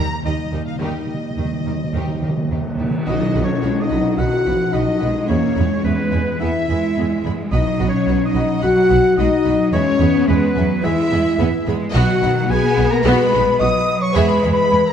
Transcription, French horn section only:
0, 0, Header, 1, 2, 480
1, 0, Start_track
1, 0, Tempo, 560224
1, 691, Time_signature, 4, 2, 24, 8
1, 5974, Tempo, 552486
1, 12885, End_track
2, 0, Start_track
2, 0, Title_t, "French horn section"
2, 0, Program_c, 0, 60
2, 216, Note_on_c, 0, 63, 59
2, 217, Note_on_c, 0, 55, 56
2, 676, Note_off_c, 0, 55, 0
2, 677, Note_off_c, 0, 63, 0
2, 687, Note_on_c, 0, 55, 52
2, 687, Note_on_c, 0, 63, 55
2, 2353, Note_off_c, 0, 55, 0
2, 2353, Note_off_c, 0, 63, 0
2, 2632, Note_on_c, 0, 63, 72
2, 2929, Note_off_c, 0, 63, 0
2, 2947, Note_on_c, 0, 61, 73
2, 3261, Note_on_c, 0, 63, 86
2, 3262, Note_off_c, 0, 61, 0
2, 3573, Note_on_c, 0, 66, 96
2, 3577, Note_off_c, 0, 63, 0
2, 4043, Note_on_c, 0, 63, 87
2, 4046, Note_off_c, 0, 66, 0
2, 4514, Note_on_c, 0, 61, 73
2, 4520, Note_off_c, 0, 63, 0
2, 5001, Note_on_c, 0, 59, 72
2, 5004, Note_off_c, 0, 61, 0
2, 5491, Note_off_c, 0, 59, 0
2, 5491, Note_on_c, 0, 64, 102
2, 6198, Note_off_c, 0, 64, 0
2, 6448, Note_on_c, 0, 63, 82
2, 6749, Note_off_c, 0, 63, 0
2, 6762, Note_on_c, 0, 61, 88
2, 7082, Note_off_c, 0, 61, 0
2, 7093, Note_on_c, 0, 63, 100
2, 7414, Note_off_c, 0, 63, 0
2, 7416, Note_on_c, 0, 66, 121
2, 7885, Note_off_c, 0, 66, 0
2, 7887, Note_on_c, 0, 63, 100
2, 8360, Note_off_c, 0, 63, 0
2, 8367, Note_on_c, 0, 61, 104
2, 8840, Note_off_c, 0, 61, 0
2, 8855, Note_on_c, 0, 59, 102
2, 9328, Note_off_c, 0, 59, 0
2, 9336, Note_on_c, 0, 64, 122
2, 10042, Note_off_c, 0, 64, 0
2, 10296, Note_on_c, 0, 66, 112
2, 10742, Note_off_c, 0, 66, 0
2, 10778, Note_on_c, 0, 68, 101
2, 11129, Note_off_c, 0, 68, 0
2, 11132, Note_on_c, 0, 70, 114
2, 11242, Note_on_c, 0, 71, 125
2, 11254, Note_off_c, 0, 70, 0
2, 11727, Note_on_c, 0, 75, 106
2, 11730, Note_off_c, 0, 71, 0
2, 12084, Note_off_c, 0, 75, 0
2, 12086, Note_on_c, 0, 73, 104
2, 12191, Note_on_c, 0, 71, 113
2, 12209, Note_off_c, 0, 73, 0
2, 12513, Note_off_c, 0, 71, 0
2, 12524, Note_on_c, 0, 71, 114
2, 12844, Note_off_c, 0, 71, 0
2, 12845, Note_on_c, 0, 70, 110
2, 12885, Note_off_c, 0, 70, 0
2, 12885, End_track
0, 0, End_of_file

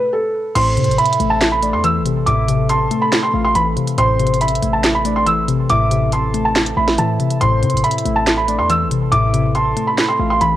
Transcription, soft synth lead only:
0, 0, Header, 1, 2, 480
1, 0, Start_track
1, 0, Key_signature, 0, "minor"
1, 0, Tempo, 428571
1, 619, Time_signature, 4, 2, 24, 8
1, 11835, End_track
2, 0, Start_track
2, 0, Title_t, "Soft synth lead"
2, 0, Program_c, 0, 80
2, 619, Note_on_c, 0, 72, 92
2, 1071, Note_off_c, 0, 72, 0
2, 1101, Note_on_c, 0, 76, 93
2, 1777, Note_off_c, 0, 76, 0
2, 1820, Note_on_c, 0, 74, 76
2, 2048, Note_off_c, 0, 74, 0
2, 2541, Note_on_c, 0, 76, 106
2, 2991, Note_off_c, 0, 76, 0
2, 3019, Note_on_c, 0, 81, 93
2, 3696, Note_off_c, 0, 81, 0
2, 3740, Note_on_c, 0, 77, 85
2, 3968, Note_off_c, 0, 77, 0
2, 4457, Note_on_c, 0, 72, 108
2, 4909, Note_off_c, 0, 72, 0
2, 4937, Note_on_c, 0, 76, 94
2, 5615, Note_off_c, 0, 76, 0
2, 5662, Note_on_c, 0, 74, 79
2, 5889, Note_off_c, 0, 74, 0
2, 6384, Note_on_c, 0, 76, 110
2, 6833, Note_off_c, 0, 76, 0
2, 6862, Note_on_c, 0, 81, 101
2, 7538, Note_off_c, 0, 81, 0
2, 7583, Note_on_c, 0, 76, 83
2, 8258, Note_off_c, 0, 76, 0
2, 8301, Note_on_c, 0, 72, 94
2, 8752, Note_off_c, 0, 72, 0
2, 8780, Note_on_c, 0, 76, 94
2, 9457, Note_off_c, 0, 76, 0
2, 9500, Note_on_c, 0, 74, 80
2, 9728, Note_off_c, 0, 74, 0
2, 10221, Note_on_c, 0, 76, 109
2, 10671, Note_off_c, 0, 76, 0
2, 10701, Note_on_c, 0, 81, 92
2, 11377, Note_off_c, 0, 81, 0
2, 11422, Note_on_c, 0, 77, 86
2, 11649, Note_off_c, 0, 77, 0
2, 11835, End_track
0, 0, End_of_file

